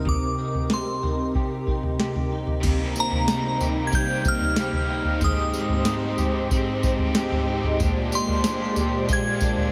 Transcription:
Already playing: analog synth pad C3 C4 A#4, clean electric guitar A#3 D#4 A#4
0.05 clean electric guitar C3, analog synth pad G4, synth bell D6, kick, floor tom
0.38 clean electric guitar D#4
0.55 floor tom
0.70 clean electric guitar C4, synth bell C6, snare
1.03 clean electric guitar D#4, floor tom
1.35 clean electric guitar G4, kick
1.67 clean electric guitar D#4, kick
1.83 floor tom
1.99 clean electric guitar G4, snare
2.16 floor tom
2.32 clean electric guitar D#4
2.47 floor tom
2.61 overdriven electric guitar C3 G3, analog synth pad C3 A#3 D#4 C5, clean electric guitar C3, kick, floor tom, crash, tambourine
2.65 overdriven electric guitar A#3 D#4 G4
2.96 clean electric guitar A#3, tambourine
3.00 synth bell A#5
3.12 floor tom
3.28 clean electric guitar D#4, snare, tambourine
3.61 clean electric guitar G4, floor tom, tambourine
3.87 overdriven electric guitar G3, synth bell G#6
3.93 clean electric guitar G3, overdriven electric guitar A#3 D#4 G4, synth bell G6, kick, tambourine
4.25 clean electric guitar D#4, synth bell F6, kick, tambourine
4.41 floor tom
4.56 overdriven electric guitar G3 A#3 D#4, clean electric guitar G4, snare, tambourine
4.61 overdriven electric guitar G4
4.73 floor tom
4.90 clean electric guitar D#4
5.05 floor tom
5.19 analog synth pad G#2 G#3 G4 C5, overdriven electric guitar G#3 C4, clean electric guitar G#3, kick, floor tom, tambourine
5.24 overdriven electric guitar D#4 G4, synth bell D#6
5.54 clean electric guitar C4, tambourine
5.69 floor tom
5.85 clean electric guitar D#4, snare, tambourine
6.18 clean electric guitar G4, floor tom, tambourine
6.49 overdriven electric guitar G#3 C4 D#4, clean electric guitar C4, kick, tambourine
6.55 overdriven electric guitar G4
6.83 clean electric guitar D#4, kick, tambourine
6.99 floor tom
7.14 overdriven electric guitar G#3 C4 D#4, clean electric guitar G4, snare, tambourine
7.19 overdriven electric guitar G4
7.31 floor tom
7.48 clean electric guitar D#4
7.64 floor tom
7.80 overdriven electric guitar A#2 D3 G#3 A#3 D4 G4, clean electric guitar A#2, analog synth pad A#2 C5 D5, kick, floor tom, tambourine
8.12 clean electric guitar A#3, overdriven electric guitar A#3 D4 G4, synth bell C6, tambourine
8.17 overdriven electric guitar G#3
8.28 floor tom
8.44 clean electric guitar D4, snare, tambourine
8.76 clean electric guitar G4, floor tom, tambourine
9.08 overdriven electric guitar G#3 A#3 D4, clean electric guitar G#3, kick, tambourine
9.13 overdriven electric guitar G4, synth bell G#6
9.41 clean electric guitar D4, kick, tambourine
9.57 floor tom

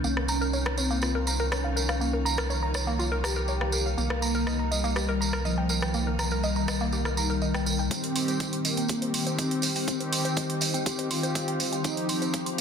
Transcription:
Already playing: synth drone D#3 D#4
0.04 analog synth bass C2, synth pluck A#3, ambient pad A#3 F4 C#6, analog polysynth C#4, tambourine
0.17 synth pluck A#4, cross-stick
0.28 synth pluck A#5, tambourine
0.41 synth pluck A#4, tambourine
0.53 synth pluck C#5, tambourine
0.66 synth pluck A#5, cross-stick
0.78 analog polysynth C4, synth pluck C#5, tambourine
0.91 synth pluck A#3, tambourine
1.02 synth pluck F4, cross-stick, tambourine
1.15 synth pluck A#4
1.27 synth pluck A#5, tambourine
1.39 synth pluck A#4, tambourine
1.52 analog polysynth C#4, synth pluck C#5, cross-stick, tambourine
1.64 synth pluck F5
1.76 synth pluck A#4, tambourine
1.89 synth pluck F5, cross-stick, tambourine
2.01 synth pluck A#3, tambourine
2.13 synth pluck A#4
2.25 synth pluck A#5, tambourine
2.38 synth pluck A#4, cross-stick, tambourine
2.50 synth pluck C#5, tambourine
2.63 synth pluck A#5
2.74 synth pluck C#5, cross-stick, tambourine
2.87 synth pluck A#3, tambourine
2.99 synth pluck F4, tambourine
3.12 synth pluck A#4
3.24 analog polysynth G4, synth pluck A#5, cross-stick, tambourine
3.36 synth pluck A#4, tambourine
3.48 synth pluck C#5, tambourine
3.61 synth pluck F5, cross-stick
3.72 synth pluck A#4, tambourine
3.86 synth pluck F5, tambourine
3.98 analog synth bass C2, ambient pad G3 D#4 A#4, analog polysynth A#3, synth pluck A#3, tambourine
4.10 synth pluck A#4, cross-stick
4.22 synth pluck A#5, tambourine
4.35 synth pluck A#4, tambourine
4.47 synth pluck D#5, cross-stick, tambourine
4.59 synth pluck A#5
4.71 analog polysynth G3, synth pluck D#5, tambourine
4.84 synth pluck A#3, tambourine
4.96 synth pluck G4, cross-stick, tambourine
5.09 synth pluck A#4
5.21 synth pluck A#5, tambourine
5.33 synth pluck A#4, cross-stick
5.45 analog polysynth F3, synth pluck D#5, tambourine
5.58 synth pluck G5
5.69 synth pluck A#4, tambourine
5.82 synth pluck G5, cross-stick, tambourine
5.94 synth pluck A#3, tambourine
6.07 synth pluck A#4
6.19 synth pluck A#5, cross-stick, tambourine
6.31 synth pluck A#4, tambourine
6.43 synth pluck D#5, tambourine
6.56 synth pluck A#5, tambourine
6.68 synth pluck D#5, cross-stick, tambourine
6.80 synth pluck A#3, tambourine
6.92 synth pluck G4, tambourine
7.05 synth pluck A#4, cross-stick, tambourine
7.17 analog polysynth D#3, synth pluck A#5, tambourine
7.30 synth pluck A#4, tambourine
7.42 synth pluck D#5, tambourine
7.54 synth pluck G5, cross-stick, tambourine
7.66 synth pluck A#4, tambourine
7.79 synth pluck G5, tambourine
7.91 analog synth bass C2, synth drone D#3 D#4, analog synth pad D#3 C4 G4, analog polysynth C4, synth pluck C4, ambient pad G4 C5 D#5 C6, kick, closed hi-hat, tambourine
8.04 analog synth bass C2, synth pluck C5, closed hi-hat
8.15 analog synth bass C2, synth pluck C6, open hi-hat, tambourine
8.28 analog synth bass C2, synth pluck C5, closed hi-hat, tambourine
8.40 analog synth bass C2, synth pluck D#5, kick, closed hi-hat, tambourine
8.53 analog synth bass C2, synth pluck C6, closed hi-hat
8.65 analog synth bass C2, analog polysynth A#3, synth pluck D#5, open hi-hat, tambourine
8.77 analog synth bass C2, synth pluck C4, closed hi-hat, tambourine
8.88 analog synth bass C2, analog synth pad D#3 C4 G4, synth pluck G4, kick, closed hi-hat, tambourine
9.02 analog synth bass C2, synth pluck C5, closed hi-hat
9.14 analog synth bass C2, analog synth pad D#3 C4 G4, synth pluck C6, open hi-hat, tambourine
9.27 analog synth bass C2, synth pluck C5, closed hi-hat, tambourine
9.38 analog synth bass C2, analog polysynth C4, synth pluck D#5, kick, closed hi-hat, tambourine
9.51 analog synth bass A#1, synth pluck G5, closed hi-hat
9.62 analog synth bass C2, synth pluck C5, open hi-hat, tambourine
9.76 analog synth bass C2, synth pluck G5, open hi-hat, tambourine
9.88 analog synth bass C2, analog synth pad D#3 C4 G4, synth pluck C4, kick, closed hi-hat, tambourine
10.00 analog synth bass C2, synth pluck C5, closed hi-hat
10.12 analog synth bass C2, synth pluck C6, open hi-hat, tambourine
10.25 analog synth bass C2, synth pluck C5, closed hi-hat, tambourine
10.36 analog synth bass C2, synth pluck D#5, kick, closed hi-hat, tambourine
10.49 analog synth bass C2, synth pluck C6, closed hi-hat
10.61 analog synth bass C2, synth pluck D#5, open hi-hat, tambourine
10.74 analog synth bass C2, synth pluck C4, closed hi-hat, tambourine
10.86 analog synth bass C2, analog synth pad D#3 C4 G4, synth pluck G4, kick, closed hi-hat, tambourine
10.99 analog synth bass C2, synth pluck C5, closed hi-hat
11.11 analog synth bass C2, analog synth pad D#3 C4 G4, analog polysynth F4, synth pluck C6, open hi-hat, tambourine
11.23 analog synth bass C2, synth pluck C5, closed hi-hat, tambourine
11.35 analog synth bass C2, synth pluck D#5, kick, closed hi-hat, tambourine
11.48 analog synth bass A#1, synth pluck G5, closed hi-hat
11.60 analog synth bass C2, synth pluck C5, open hi-hat, tambourine
11.72 analog synth bass C2, synth pluck G5, closed hi-hat, tambourine
11.84 analog synth bass C2, analog synth pad F3 C4 G4, synth pluck C4, analog polysynth D#4, ambient pad G4 F5, kick, closed hi-hat, tambourine
11.97 analog synth bass C2, synth pluck C5, closed hi-hat
12.09 analog synth bass C2, synth pluck C6, open hi-hat, tambourine
12.22 analog synth bass C2, synth pluck C5, closed hi-hat, tambourine
12.34 analog synth bass C2, synth pluck F5, kick, closed hi-hat, tambourine
12.46 analog synth bass C2, synth pluck C6, closed hi-hat

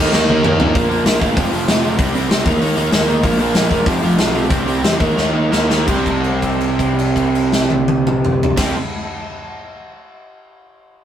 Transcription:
Already playing: picked electric bass D#2, distorted electric guitar D#3 A#3 D#4
0.00 flute A4
0.12 picked electric bass D#2, distorted electric guitar D#3 A#3 D#4, flute G4, snare
0.28 picked electric bass D#2, distorted electric guitar D#3 A#3 D#4, high tom
0.42 picked electric bass D#2, distorted electric guitar D#3 A#3 D#4, mid tom
0.59 picked electric bass A#2, distorted electric guitar D#3 A#3 D#4, floor tom
0.74 picked electric bass A#1, distorted electric guitar A#2 F3 A#3, kick, open hi-hat
0.90 picked electric bass A#1, distorted electric guitar A#2 F3 A#3, open hi-hat
1.05 picked electric bass A#1, distorted electric guitar A#2 F3 A#3, snare, open hi-hat
1.19 picked electric bass G1, distorted electric guitar A#2 F3 A#3, kick, open hi-hat
1.35 picked electric bass F1, distorted electric guitar F2 C3 F3, kick, open hi-hat
1.50 picked electric bass F1, distorted electric guitar F2 C3 F3, open hi-hat
1.67 picked electric bass F1, distorted electric guitar F2 C3 F3, snare, open hi-hat
1.81 distorted electric guitar F2 C3 F3, open hi-hat
1.97 picked electric bass C2, distorted electric guitar C3 G3 C4, kick, open hi-hat
2.13 picked electric bass C2, distorted electric guitar C3 G3 C4, open hi-hat
2.28 picked electric bass C2, distorted electric guitar C3 G3 C4, snare, open hi-hat
2.44 picked electric bass D#2, distorted electric guitar D#3 A#3 D#4, kick, open hi-hat
2.60 picked electric bass D#2, distorted electric guitar D#3 A#3 D#4, open hi-hat
2.76 picked electric bass D#2, distorted electric guitar D#3 A#3 D#4, open hi-hat
2.91 picked electric bass D#2, distorted electric guitar D#3 A#3 D#4, snare, open hi-hat
3.07 distorted electric guitar D#3 A#3 D#4, open hi-hat
3.23 picked electric bass A#1, distorted electric guitar A#2 F3 A#3, kick, open hi-hat
3.38 picked electric bass A#1, distorted electric guitar A#2 F3 A#3, open hi-hat
3.54 picked electric bass A#1, distorted electric guitar A#2 F3 A#3, snare, open hi-hat
3.70 picked electric bass E1, distorted electric guitar A#2 F3 A#3, kick, open hi-hat
3.86 picked electric bass F1, distorted electric guitar F2 C3 F3, kick, open hi-hat
4.00 picked electric bass F1, distorted electric guitar F2 C3 F3, open hi-hat
4.17 picked electric bass B1, distorted electric guitar F2 C3 F3, snare, open hi-hat
4.33 distorted electric guitar F2 C3 F3, open hi-hat
4.48 picked electric bass C2, distorted electric guitar C3 G3 C4, kick, open hi-hat
4.66 picked electric bass C2, distorted electric guitar C3 G3 C4, open hi-hat
4.83 picked electric bass E2, distorted electric guitar C3 G3 C4, snare, open hi-hat
4.98 picked electric bass D#2, distorted electric guitar D#3 A#3 D#4, kick, open hi-hat
5.16 picked electric bass D#2, distorted electric guitar D#3 A#3 D#4, snare
5.33 picked electric bass D#2, distorted electric guitar D#3 A#3 D#4
5.51 picked electric bass D#2, distorted electric guitar D#3 A#3 D#4, snare
5.69 distorted electric guitar D#3 A#3 D#4, snare
5.85 picked electric bass C2, distorted electric guitar C3 G3 C4, kick, crash
6.06 kick, crash
6.24 crash
6.42 kick, crash
6.61 crash
6.79 kick, crash
6.99 crash
7.16 kick, crash
7.35 crash
7.52 snare
7.70 high tom
7.88 high tom
8.07 mid tom
8.25 mid tom
8.43 floor tom
8.56 picked electric bass C2, distorted electric guitar C3 G3 C4, kick, snare, crash

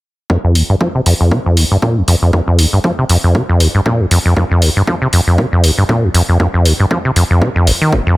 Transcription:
0.30 acid bass F2, kick
0.44 acid bass F2
0.55 acid bass D#2, open hi-hat
0.70 acid bass G2
0.81 acid bass F3, kick
0.95 acid bass C3
1.06 acid bass F2, open hi-hat
1.21 acid bass F2
1.31 acid bass C3, kick
1.46 acid bass F2
1.57 acid bass D#2, open hi-hat
1.71 acid bass G2
1.82 acid bass A#2, kick
1.97 acid bass F2
2.08 acid bass F2, open hi-hat
2.22 acid bass F2
2.33 acid bass F2, kick
2.48 acid bass F2
2.58 acid bass D#2, open hi-hat
2.73 acid bass G2
2.84 acid bass F3, kick
2.98 acid bass C3
3.09 acid bass F2, open hi-hat
3.24 acid bass F2
3.35 acid bass C3, kick
3.49 acid bass F2
3.60 acid bass D#2, open hi-hat
3.75 acid bass G2
3.86 acid bass A#2, kick
4.00 acid bass F2
4.11 acid bass F2, open hi-hat
4.25 acid bass F2
4.36 acid bass F2, kick
4.51 acid bass F2
4.62 acid bass D#2, open hi-hat
4.76 acid bass G2
4.87 acid bass F3, kick
5.02 acid bass C3
5.13 acid bass F2, open hi-hat
5.27 acid bass F2
5.38 acid bass C3, kick
5.52 acid bass F2
5.63 acid bass D#2, open hi-hat
5.78 acid bass G2
5.89 acid bass A#2, kick
6.03 acid bass F2
6.14 acid bass F2, open hi-hat
6.29 acid bass F2
6.40 acid bass F2, kick
6.54 acid bass F2
6.65 acid bass D#2, open hi-hat
6.80 acid bass G2
6.91 acid bass F3, kick
7.05 acid bass C3
7.16 acid bass F2, open hi-hat
7.30 acid bass F2
7.42 acid bass C3, kick
7.56 acid bass F2
7.67 acid bass F1, open hi-hat
7.81 acid bass D#3
7.92 acid bass F1, kick
8.07 acid bass F2

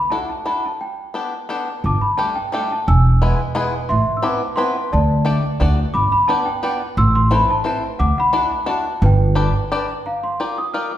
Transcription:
0.10 five-string banjo D4 E4 F#4 A4, celesta A5
0.29 celesta A5
0.46 five-string banjo D4 E4 F#4 A4, celesta B5
0.66 celesta A5
0.81 celesta G5
1.14 five-string banjo B3 D4 G4 A4
1.49 five-string banjo B3 D4 G4 A4
1.84 upright bass G1, celesta A5 D6
2.01 celesta B5
2.17 five-string banjo G3 A3 D4 G4 A4, celesta A5
2.36 celesta G5
2.52 five-string banjo G3 A3 D4 G4 A4, celesta G5
2.72 celesta A5
2.87 upright bass E1, celesta G#5 E6
3.22 five-string banjo G#3 B3 E4 G#4 B4
3.55 five-string banjo G#3 B3 E4 G#4 B4
3.89 upright bass A1, celesta E5 C6
4.17 celesta E6
4.22 five-string banjo B3 C4 E4 A4 B4, celesta D6
4.56 five-string banjo B3 C4 E4 A4 B4, celesta C6
4.92 upright bass D2, celesta D5 A5
5.25 five-string banjo A3 D4 G4 A4 D5
5.60 upright bass D2, five-string banjo A3 D4 F#4 A4 D5
5.94 upright bass G1, celesta B5 D6
6.12 celesta B5
6.28 five-string banjo B3 D4 G4 B4 D5, celesta A5
6.46 celesta G5
6.63 five-string banjo B3 D4 G4 B4 D5, celesta G5
6.97 upright bass A1, celesta C6 E6
7.15 celesta C6
7.31 five-string banjo C4 E4 A4 B4 C5, celesta B5
7.50 celesta A5
7.64 five-string banjo C4 E4 A4 B4 C5, celesta A5
7.99 upright bass D2, celesta F#5 D6
8.18 celesta F#5 B5
8.33 five-string banjo D4 E4 F#4 A4 D5
8.66 five-string banjo D4 E4 F#4 A4 D5, celesta A5
9.02 upright bass G1, celesta B4 G5
9.35 five-string banjo D4 G4 A4 B4 D5
9.72 five-string banjo D4 G4 A4 B4 D5
10.06 celesta F5 A#5
10.23 celesta C6
10.40 five-string banjo F4 G4 A#4 D5, celesta D6
10.58 celesta D#6
10.74 five-string banjo F4 G4 A#4 D5, celesta F6
10.91 celesta D6

